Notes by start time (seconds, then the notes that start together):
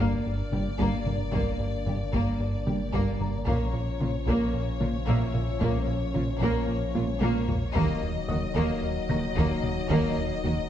Already playing: G1 A#3 D4 D5, impact
0.00 G2 G3 A#3 F6
0.26 G2
0.52 G1 G2 G3 A#3 D4 G4, taiko mid
0.79 G1 G2 G3 A#3, taiko
1.06 G2, taiko mid
1.32 G1 G2 G3 A#3, taiko
1.60 G2
1.86 G1 G2 A#3 G4, taiko mid
2.13 G1 G2 G3 A#3, taiko
2.40 G2
2.67 G1 G2 G3 A#3 D4 G4, taiko mid
2.93 G1 G2 G3 A#3, taiko
3.20 G2 A#5, taiko mid
3.46 A#1 A#2 F3 A#3 C#4 C#5, taiko
3.73 A#2
4.00 A#1 A#2 A#3 C#4 F4, taiko mid
4.27 A#1 A#2 A#3, taiko
4.54 A#2
4.80 A#1 A#2 A#3 F4, taiko mid
5.06 A#1 A#2 A#3 E5 E6, taiko
5.34 A#2, taiko mid
5.60 A#1 A#2 A#3, taiko
5.87 A#2
6.14 A#1 A#2 A#3 C#4 F4, taiko mid
6.40 A#1 A#2 A#3, taiko
6.68 A#2
6.94 A#1 A#2 A#3 F4, taiko high
7.21 A#1 A#2 A#3, taiko high
7.48 A#2, taiko low
7.75 D#1 D#2 D#3 F#3 A#3 D#4 D#5, taiko
8.02 D#2
8.28 D#2 D#3 F#3 A#3 F#4 D#5 D#6, taiko mid
8.55 D#2 D#3 A#3, taiko
8.83 D#2
9.09 D#2 D#3 A#3 F#4 A#5 A#6, taiko mid
9.35 D#2 D#3 A#3, taiko
9.63 D#2, taiko mid
9.89 D#2 D#3 A#3, taiko
10.17 D#2
10.43 D#2 D#3 F#3 A#3 F#4, taiko mid